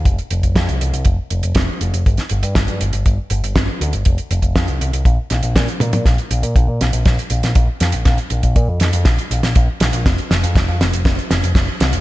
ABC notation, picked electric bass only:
X:1
M:4/4
L:1/16
Q:1/4=120
K:Bbmix
V:1 name="Picked electric bass" clef=bass
F,,, z F,,, F,,, F,, C,, C,, C,, F,,, z F,,, F,,, F,,, z F,,, F,,, | G,,, z G,,, G,, G,,, G,, G,,, G,,, G,,, z G,,, G,,, G,,, z D,, G,,, | F,,, z F,,, F,,, F,, C,, C,, C,, B,,, z B,,, B,,, B,, z B,, B,, | B,,, z B,,, B,, B,,, B,, B,,, B,,, B,,, z B,,, B,,, B,,, z F,, B,,, |
B,,, z B,,, B,,, B,, F,, F,, F,, B,,, z B,,, B,,, B,,, z B,,, B,,, | F,,, z F,,, F,, F,,, F,, F,,, F,,, F,,, z F,,, F,,, F,,, z C,, F,,, |]